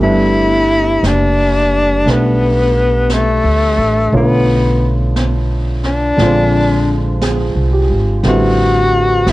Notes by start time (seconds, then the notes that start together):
0.00 G1 G3 A3 B3 D4 E4, brush sweep
1.03 F#1 D4, brush sweep, snare, hi-hat pedal
2.06 B1 A3 B3 D4, brush sweep, snare
2.11 B3
3.10 A3, brush sweep, snare, hi-hat pedal
3.44 D2
3.78 A1
4.12 B1 D3 A3 B3 F4 C#5, brush sweep
4.17 B3
5.16 brush sweep, snare, hi-hat pedal
5.84 D4, snare
6.17 A#1 D3 F3 G#3, brush sweep, snare
6.21 C4 F4
7.21 G#4, brush sweep, snare, hi-hat pedal
7.55 C2
7.73 G4
7.90 G#1
8.23 A1 D3 G3 C4 E4 B4, brush sweep, snare
8.28 F#4
9.26 G1 E4, brush sweep, snare, hi-hat pedal